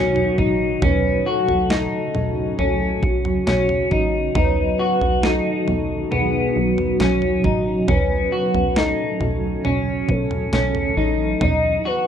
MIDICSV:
0, 0, Header, 1, 7, 480
1, 0, Start_track
1, 0, Tempo, 882353
1, 448, Time_signature, 4, 2, 24, 8
1, 6566, End_track
2, 0, Start_track
2, 0, Title_t, "Celesta"
2, 0, Program_c, 0, 8
2, 2417, Note_on_c, 0, 73, 69
2, 3268, Note_off_c, 0, 73, 0
2, 6566, End_track
3, 0, Start_track
3, 0, Title_t, "Soft synth lead"
3, 0, Program_c, 1, 80
3, 0, Note_on_c, 1, 66, 86
3, 454, Note_on_c, 1, 71, 92
3, 462, Note_off_c, 1, 66, 0
3, 696, Note_on_c, 1, 69, 98
3, 704, Note_off_c, 1, 71, 0
3, 1411, Note_off_c, 1, 69, 0
3, 1414, Note_on_c, 1, 69, 79
3, 1650, Note_on_c, 1, 66, 97
3, 1658, Note_off_c, 1, 69, 0
3, 2376, Note_on_c, 1, 71, 94
3, 2384, Note_off_c, 1, 66, 0
3, 2856, Note_on_c, 1, 69, 85
3, 2864, Note_off_c, 1, 71, 0
3, 3337, Note_on_c, 1, 68, 84
3, 3345, Note_off_c, 1, 69, 0
3, 3580, Note_on_c, 1, 66, 97
3, 3588, Note_off_c, 1, 68, 0
3, 4300, Note_on_c, 1, 71, 98
3, 4308, Note_off_c, 1, 66, 0
3, 4779, Note_on_c, 1, 69, 93
3, 4787, Note_off_c, 1, 71, 0
3, 5253, Note_off_c, 1, 69, 0
3, 5255, Note_on_c, 1, 73, 90
3, 5497, Note_on_c, 1, 69, 107
3, 5505, Note_off_c, 1, 73, 0
3, 6218, Note_on_c, 1, 75, 114
3, 6226, Note_off_c, 1, 69, 0
3, 6457, Note_on_c, 1, 71, 105
3, 6465, Note_off_c, 1, 75, 0
3, 6566, Note_off_c, 1, 71, 0
3, 6566, End_track
4, 0, Start_track
4, 0, Title_t, "Clean electric guitar"
4, 0, Program_c, 2, 27
4, 0, Note_on_c, 2, 61, 77
4, 207, Note_off_c, 2, 61, 0
4, 209, Note_on_c, 2, 63, 65
4, 447, Note_off_c, 2, 63, 0
4, 449, Note_on_c, 2, 61, 81
4, 687, Note_on_c, 2, 66, 70
4, 688, Note_off_c, 2, 61, 0
4, 927, Note_off_c, 2, 66, 0
4, 927, Note_on_c, 2, 63, 72
4, 1406, Note_off_c, 2, 63, 0
4, 1408, Note_on_c, 2, 61, 66
4, 1880, Note_off_c, 2, 61, 0
4, 1887, Note_on_c, 2, 61, 72
4, 2126, Note_off_c, 2, 61, 0
4, 2128, Note_on_c, 2, 63, 65
4, 2361, Note_off_c, 2, 63, 0
4, 2368, Note_on_c, 2, 63, 78
4, 2608, Note_off_c, 2, 63, 0
4, 2608, Note_on_c, 2, 66, 69
4, 2847, Note_on_c, 2, 63, 75
4, 2848, Note_off_c, 2, 66, 0
4, 3324, Note_off_c, 2, 63, 0
4, 3326, Note_on_c, 2, 59, 69
4, 3806, Note_off_c, 2, 59, 0
4, 3808, Note_on_c, 2, 61, 76
4, 4046, Note_off_c, 2, 61, 0
4, 4049, Note_on_c, 2, 63, 62
4, 4286, Note_off_c, 2, 63, 0
4, 4289, Note_on_c, 2, 61, 75
4, 4527, Note_on_c, 2, 66, 66
4, 4528, Note_off_c, 2, 61, 0
4, 4767, Note_off_c, 2, 66, 0
4, 4769, Note_on_c, 2, 63, 70
4, 5246, Note_off_c, 2, 63, 0
4, 5248, Note_on_c, 2, 61, 76
4, 5722, Note_off_c, 2, 61, 0
4, 5729, Note_on_c, 2, 61, 74
4, 5967, Note_off_c, 2, 61, 0
4, 5970, Note_on_c, 2, 63, 63
4, 6203, Note_off_c, 2, 63, 0
4, 6210, Note_on_c, 2, 63, 80
4, 6448, Note_on_c, 2, 66, 67
4, 6449, Note_off_c, 2, 63, 0
4, 6566, Note_off_c, 2, 66, 0
4, 6566, End_track
5, 0, Start_track
5, 0, Title_t, "Ambient pad"
5, 0, Program_c, 3, 92
5, 0, Note_on_c, 3, 47, 76
5, 0, Note_on_c, 3, 51, 69
5, 0, Note_on_c, 3, 54, 67
5, 0, Note_on_c, 3, 63, 66
5, 0, Note_on_c, 3, 66, 90
5, 426, Note_off_c, 3, 63, 0
5, 427, Note_off_c, 3, 47, 0
5, 427, Note_off_c, 3, 51, 0
5, 428, Note_off_c, 3, 66, 0
5, 448, Note_on_c, 3, 66, 81
5, 449, Note_on_c, 3, 49, 73
5, 449, Note_on_c, 3, 61, 72
5, 451, Note_on_c, 3, 45, 81
5, 2349, Note_off_c, 3, 49, 0
5, 2349, Note_off_c, 3, 61, 0
5, 2350, Note_off_c, 3, 45, 0
5, 2368, Note_on_c, 3, 47, 74
5, 2368, Note_on_c, 3, 51, 67
5, 2368, Note_on_c, 3, 63, 75
5, 3318, Note_off_c, 3, 63, 0
5, 3326, Note_on_c, 3, 61, 69
5, 4266, Note_off_c, 3, 66, 0
5, 4268, Note_off_c, 3, 47, 0
5, 4269, Note_off_c, 3, 51, 0
5, 4277, Note_off_c, 3, 61, 0
5, 4285, Note_on_c, 3, 66, 85
5, 4286, Note_on_c, 3, 45, 72
5, 4287, Note_on_c, 3, 61, 74
5, 4288, Note_on_c, 3, 49, 68
5, 5237, Note_off_c, 3, 66, 0
5, 5249, Note_on_c, 3, 52, 84
5, 6188, Note_off_c, 3, 45, 0
5, 6188, Note_off_c, 3, 61, 0
5, 6189, Note_off_c, 3, 49, 0
5, 6198, Note_off_c, 3, 52, 0
5, 6210, Note_on_c, 3, 51, 68
5, 6211, Note_on_c, 3, 63, 72
5, 6211, Note_on_c, 3, 66, 86
5, 6212, Note_on_c, 3, 47, 75
5, 6566, Note_off_c, 3, 47, 0
5, 6566, Note_off_c, 3, 51, 0
5, 6566, Note_off_c, 3, 54, 0
5, 6566, Note_off_c, 3, 63, 0
5, 6566, Note_off_c, 3, 66, 0
5, 6566, End_track
6, 0, Start_track
6, 0, Title_t, "Analog synth bass"
6, 0, Program_c, 4, 38
6, 0, Note_on_c, 4, 35, 91
6, 178, Note_off_c, 4, 35, 0
6, 209, Note_on_c, 4, 33, 82
6, 419, Note_off_c, 4, 33, 0
6, 447, Note_on_c, 4, 35, 102
6, 658, Note_off_c, 4, 35, 0
6, 808, Note_on_c, 4, 35, 90
6, 1019, Note_off_c, 4, 35, 0
6, 1168, Note_on_c, 4, 35, 89
6, 1379, Note_off_c, 4, 35, 0
6, 1408, Note_on_c, 4, 35, 85
6, 1619, Note_off_c, 4, 35, 0
6, 1646, Note_on_c, 4, 35, 99
6, 1858, Note_off_c, 4, 35, 0
6, 1889, Note_on_c, 4, 35, 98
6, 2100, Note_off_c, 4, 35, 0
6, 2128, Note_on_c, 4, 33, 97
6, 2339, Note_off_c, 4, 33, 0
6, 2368, Note_on_c, 4, 35, 101
6, 2579, Note_off_c, 4, 35, 0
6, 2728, Note_on_c, 4, 35, 102
6, 2939, Note_off_c, 4, 35, 0
6, 3089, Note_on_c, 4, 35, 98
6, 3299, Note_off_c, 4, 35, 0
6, 3329, Note_on_c, 4, 35, 90
6, 3540, Note_off_c, 4, 35, 0
6, 3570, Note_on_c, 4, 35, 95
6, 3780, Note_off_c, 4, 35, 0
6, 3811, Note_on_c, 4, 35, 94
6, 4020, Note_off_c, 4, 35, 0
6, 4048, Note_on_c, 4, 33, 83
6, 4259, Note_off_c, 4, 33, 0
6, 4288, Note_on_c, 4, 35, 97
6, 4499, Note_off_c, 4, 35, 0
6, 4648, Note_on_c, 4, 35, 92
6, 4859, Note_off_c, 4, 35, 0
6, 5008, Note_on_c, 4, 35, 94
6, 5219, Note_off_c, 4, 35, 0
6, 5250, Note_on_c, 4, 35, 90
6, 5460, Note_off_c, 4, 35, 0
6, 5488, Note_on_c, 4, 35, 96
6, 5699, Note_off_c, 4, 35, 0
6, 5729, Note_on_c, 4, 35, 96
6, 5940, Note_off_c, 4, 35, 0
6, 5967, Note_on_c, 4, 33, 102
6, 6179, Note_off_c, 4, 33, 0
6, 6207, Note_on_c, 4, 35, 103
6, 6418, Note_off_c, 4, 35, 0
6, 6566, End_track
7, 0, Start_track
7, 0, Title_t, "Drums"
7, 86, Note_on_c, 9, 43, 52
7, 141, Note_off_c, 9, 43, 0
7, 208, Note_on_c, 9, 36, 73
7, 262, Note_off_c, 9, 36, 0
7, 447, Note_on_c, 9, 36, 88
7, 447, Note_on_c, 9, 43, 105
7, 501, Note_off_c, 9, 36, 0
7, 501, Note_off_c, 9, 43, 0
7, 808, Note_on_c, 9, 43, 60
7, 862, Note_off_c, 9, 43, 0
7, 926, Note_on_c, 9, 38, 104
7, 981, Note_off_c, 9, 38, 0
7, 1167, Note_on_c, 9, 43, 62
7, 1222, Note_off_c, 9, 43, 0
7, 1408, Note_on_c, 9, 43, 65
7, 1462, Note_off_c, 9, 43, 0
7, 1647, Note_on_c, 9, 36, 88
7, 1701, Note_off_c, 9, 36, 0
7, 1768, Note_on_c, 9, 43, 57
7, 1822, Note_off_c, 9, 43, 0
7, 1889, Note_on_c, 9, 38, 90
7, 1943, Note_off_c, 9, 38, 0
7, 2008, Note_on_c, 9, 43, 51
7, 2062, Note_off_c, 9, 43, 0
7, 2128, Note_on_c, 9, 36, 73
7, 2183, Note_off_c, 9, 36, 0
7, 2368, Note_on_c, 9, 36, 96
7, 2368, Note_on_c, 9, 43, 109
7, 2422, Note_off_c, 9, 36, 0
7, 2422, Note_off_c, 9, 43, 0
7, 2728, Note_on_c, 9, 43, 57
7, 2782, Note_off_c, 9, 43, 0
7, 2847, Note_on_c, 9, 38, 103
7, 2901, Note_off_c, 9, 38, 0
7, 3088, Note_on_c, 9, 43, 56
7, 3142, Note_off_c, 9, 43, 0
7, 3328, Note_on_c, 9, 43, 61
7, 3383, Note_off_c, 9, 43, 0
7, 3688, Note_on_c, 9, 43, 55
7, 3743, Note_off_c, 9, 43, 0
7, 3808, Note_on_c, 9, 38, 91
7, 3863, Note_off_c, 9, 38, 0
7, 3927, Note_on_c, 9, 43, 50
7, 3982, Note_off_c, 9, 43, 0
7, 4049, Note_on_c, 9, 36, 75
7, 4103, Note_off_c, 9, 36, 0
7, 4288, Note_on_c, 9, 36, 98
7, 4288, Note_on_c, 9, 43, 107
7, 4342, Note_off_c, 9, 36, 0
7, 4343, Note_off_c, 9, 43, 0
7, 4649, Note_on_c, 9, 43, 61
7, 4703, Note_off_c, 9, 43, 0
7, 4767, Note_on_c, 9, 38, 103
7, 4822, Note_off_c, 9, 38, 0
7, 5008, Note_on_c, 9, 43, 57
7, 5063, Note_off_c, 9, 43, 0
7, 5249, Note_on_c, 9, 43, 62
7, 5303, Note_off_c, 9, 43, 0
7, 5487, Note_on_c, 9, 36, 86
7, 5541, Note_off_c, 9, 36, 0
7, 5607, Note_on_c, 9, 43, 58
7, 5662, Note_off_c, 9, 43, 0
7, 5727, Note_on_c, 9, 38, 88
7, 5782, Note_off_c, 9, 38, 0
7, 5846, Note_on_c, 9, 43, 56
7, 5901, Note_off_c, 9, 43, 0
7, 6207, Note_on_c, 9, 36, 97
7, 6207, Note_on_c, 9, 43, 106
7, 6262, Note_off_c, 9, 36, 0
7, 6262, Note_off_c, 9, 43, 0
7, 6566, End_track
0, 0, End_of_file